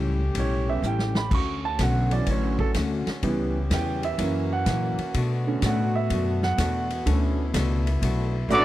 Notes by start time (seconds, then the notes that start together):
Already playing: C#2 A2 G3 A3 C#4 E4 G4
0.35 B1 A2 G3 C#4, kick, ride
0.39 E4 C#5
0.68 C#3 G3 B3 E5
0.82 A1 A2 G3 C#4 E4, hi-hat pedal
0.87 G5
0.99 snare
1.15 B5, snare
1.31 D2 D3 A3 C#4 F#4 C#6, kick, crash
1.35 F#4
1.65 A5
1.79 B1 D3 A3 C#4 F#4 F#5, kick, snare, hi-hat pedal, ride
2.11 E3 F#3 C#4 D5, ride
2.26 A1 D3 A3 C#4 F#4, kick, ride
2.31 C#5
2.59 A4, kick
2.74 D2 D3 A3 C#4 F#4, kick, snare, hi-hat pedal, ride
3.06 muted upright bass stroke, snare, ride
3.23 C#2 C#3 E3 G3 B3 E4 G4, kick, ride
3.70 E2 C#3 G3 B3 E4 G5, kick, snare, hi-hat pedal, ride
4.03 E5, ride
4.18 F#2 E3 A#3 C#4 F#4, kick, ride
4.53 F#5
4.66 F#2 A#2 E3 A#3 C#4, kick, snare, hi-hat pedal, ride
4.98 muted upright bass stroke, ride
5.14 B2 A3 B3 D4 F#4, kick, ride
5.47 D3 A3 C#4
5.62 A2 B2 A3 D4 F#4, kick, snare, hi-hat pedal, ride
5.66 F#5
5.96 E5
6.10 F#2 B2 A3 D4, kick, ride
6.14 F#4
6.43 F#5, snare
6.58 E2 B2 A3 D4 F#4, kick, snare, hi-hat pedal, ride
6.90 ride
7.05 D2 B2 D3 A3 C#4 D4 E4 F#4, kick, ride
7.54 C#2 B2 A3 D4 F#4, kick, snare, hi-hat pedal, ride
7.87 ride
8.02 B1 B2 A3 D4 F#4, kick, ride
8.49 A1 B2 F#3 A3 B3 D4 F#4 A4 D5, hi-hat pedal, high tom